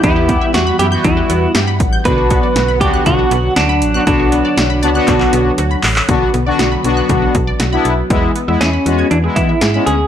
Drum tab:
HH |x-x-x-x-x-x-x-x-|x-x-x-x-x-x-x-x-|x-x-x-x-x-x-x-o-|x-x-x-x-x-x-x-x-|
CP |----------------|----------------|--------xx----xx|----------------|
SD |----o-------o---|----o-------o---|----o-----------|----o-------o---|
BD |o-o-----o-----o-|o-o---o-o-------|o-------o-------|o-------o-o-----|

HH |x-x-x-x-x-x-x-x-|
CP |----------------|
SD |----o-------o---|
BD |o---------o-----|